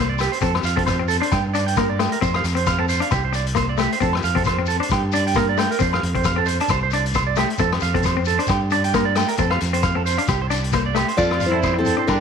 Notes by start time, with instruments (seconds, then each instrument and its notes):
Already playing: fingered electric bass C2, clean electric guitar A#3
0.09 clean electric guitar D5
0.19 clean electric guitar G4, cross-stick, closed hi-hat, low agogo, shekere
0.32 clean electric guitar C5, closed hi-hat
0.41 fingered electric bass F2, clean electric guitar C4 A4, kick, closed hi-hat, shekere
0.55 cross-stick, low agogo
0.63 fingered electric bass F2, clean electric guitar F5, closed hi-hat, shekere
0.76 clean electric guitar C4 A4, kick, closed hi-hat
0.86 clean electric guitar C5, kick, cross-stick, closed hi-hat, low agogo, shekere
0.99 clean electric guitar C4
1.08 clean electric guitar A4, closed hi-hat, shekere
1.20 clean electric guitar D4 C5, closed hi-hat
1.31 fingered electric bass G2, clean electric guitar G5, kick, cross-stick, low agogo, shekere
1.53 clean electric guitar D4 D5, closed hi-hat, shekere
1.66 clean electric guitar G5, closed hi-hat
1.76 clean electric guitar A#3 A#4, kick, cross-stick, closed hi-hat, low agogo, shekere
1.90 clean electric guitar D5
1.99 clean electric guitar A3 G5, cross-stick, closed hi-hat, low agogo, shekere
2.12 clean electric guitar A#4, closed hi-hat
2.21 fingered electric bass F2, clean electric guitar C4 C5, kick, closed hi-hat, shekere
2.34 clean electric guitar F5, cross-stick, low agogo
2.44 fingered electric bass F2, closed hi-hat, shekere
2.55 clean electric guitar C4 C5, closed hi-hat
2.66 clean electric guitar F5, kick, cross-stick, closed hi-hat, low agogo, shekere
2.79 clean electric guitar C4 A4
2.89 clean electric guitar C5, closed hi-hat, shekere
3.00 clean electric guitar D4 F5, closed hi-hat
3.11 fingered electric bass C2, clean electric guitar G4, kick, cross-stick, closed hi-hat, low agogo, shekere
3.25 clean electric guitar C5
3.33 clean electric guitar D5, muted clean electric guitar stroke, closed hi-hat, shekere
3.46 closed hi-hat
3.55 clean electric guitar A#3 C5, kick, cross-stick, closed hi-hat, low agogo, shekere
3.69 clean electric guitar D5
3.78 clean electric guitar A3 G4, cross-stick, closed hi-hat, low agogo, shekere
3.92 clean electric guitar C5, closed hi-hat
4.00 fingered electric bass F2, clean electric guitar C4 A4, kick, closed hi-hat, shekere
4.13 cross-stick, low agogo
4.23 fingered electric bass F2, clean electric guitar F5, closed hi-hat, shekere
4.35 clean electric guitar C4 A4, kick, closed hi-hat
4.44 clean electric guitar C5, kick, cross-stick, closed hi-hat, low agogo, shekere
4.59 clean electric guitar C4
4.66 clean electric guitar A4, closed hi-hat, shekere
4.80 clean electric guitar D4 C5, closed hi-hat
4.89 fingered electric bass G2, clean electric guitar G5, kick, cross-stick, closed hi-hat, low agogo, shekere
5.12 clean electric guitar D4 D5, closed hi-hat, shekere
5.27 clean electric guitar G5, closed hi-hat
5.34 clean electric guitar A#3 A#4, kick, cross-stick, closed hi-hat, low agogo, shekere
5.49 clean electric guitar D5
5.57 clean electric guitar A3 G5, cross-stick, closed hi-hat, low agogo, shekere
5.71 clean electric guitar A#4, closed hi-hat
5.79 fingered electric bass F2, clean electric guitar C4 C5, kick, closed hi-hat, shekere
5.93 clean electric guitar F5, cross-stick, low agogo
6.03 fingered electric bass F2, closed hi-hat
6.15 clean electric guitar C4 C5, kick, closed hi-hat
6.24 clean electric guitar F5, kick, cross-stick, closed hi-hat, low agogo, shekere
6.36 clean electric guitar C4 A4
6.46 clean electric guitar C5, closed hi-hat, shekere
6.60 clean electric guitar D4 A5, closed hi-hat
6.68 fingered electric bass C2, clean electric guitar C5, kick, cross-stick, closed hi-hat, low agogo, shekere
6.83 clean electric guitar C5
6.91 clean electric guitar D4 D5, closed hi-hat, shekere
7.06 closed hi-hat
7.14 clean electric guitar C5, kick, cross-stick, closed hi-hat, low agogo, shekere
7.27 clean electric guitar D5
7.36 clean electric guitar A3 G4, cross-stick, closed hi-hat, low agogo, shekere
7.50 closed hi-hat
7.58 fingered electric bass F2, clean electric guitar C4 A4, kick, closed hi-hat, shekere
7.72 cross-stick, low agogo
7.80 fingered electric bass F2, clean electric guitar F5, closed hi-hat, shekere
7.94 clean electric guitar C4 A4, kick, closed hi-hat
8.03 clean electric guitar C5, kick, cross-stick, closed hi-hat, low agogo, shekere
8.17 clean electric guitar C4
8.25 clean electric guitar A4, closed hi-hat, shekere
8.38 clean electric guitar D4 C5, closed hi-hat
8.47 fingered electric bass G2, clean electric guitar G5, kick, cross-stick, closed hi-hat, low agogo, shekere
8.70 clean electric guitar D4 D5, closed hi-hat, shekere
8.84 clean electric guitar G5, closed hi-hat
8.93 clean electric guitar A#3 A#4, kick, cross-stick, closed hi-hat, low agogo, shekere
9.05 clean electric guitar D5
9.15 clean electric guitar A3 G5, cross-stick, closed hi-hat, low agogo, shekere
9.28 clean electric guitar A#4, closed hi-hat
9.37 fingered electric bass F2, clean electric guitar C4 A4, kick, closed hi-hat, shekere
9.50 clean electric guitar F5, cross-stick, low agogo
9.60 fingered electric bass F2, closed hi-hat, shekere
9.73 clean electric guitar C4 C5, closed hi-hat
9.83 clean electric guitar F5, kick, cross-stick, closed hi-hat, low agogo, shekere
9.95 clean electric guitar C4 A4
10.06 clean electric guitar C5, closed hi-hat, shekere
10.17 clean electric guitar D4 F5, closed hi-hat
10.28 fingered electric bass C2, clean electric guitar G4, kick, cross-stick, closed hi-hat, low agogo, shekere
10.42 clean electric guitar C5
10.50 clean electric guitar D4 D5, closed hi-hat, shekere
10.64 closed hi-hat
10.72 clean electric guitar A#3 C5, kick, cross-stick, closed hi-hat, low agogo, shekere
10.86 clean electric guitar D5
10.95 clean electric guitar A3 G4, cross-stick, closed hi-hat, low agogo, shekere
11.08 clean electric guitar C5, closed hi-hat
11.17 fingered electric bass F2, clean electric guitar C4 A4, steel-string acoustic guitar F4 D5, trumpet F4, kick, shekere
11.31 cross-stick, low agogo
11.40 clean electric guitar F5, closed hi-hat, shekere
11.46 steel-string acoustic guitar E4 C5, trumpet E4
11.52 clean electric guitar C4 A4
11.63 clean electric guitar C5, kick, cross-stick, low agogo, shekere
11.74 clean electric guitar C4
11.79 trumpet C4, steel-string acoustic guitar C4 A4
11.85 clean electric guitar A4, closed hi-hat, shekere
11.97 clean electric guitar D4 C5
12.07 fingered electric bass G2, steel-string acoustic guitar D4 A#4, trumpet D4, clean electric guitar G5, kick, cross-stick, low agogo, shekere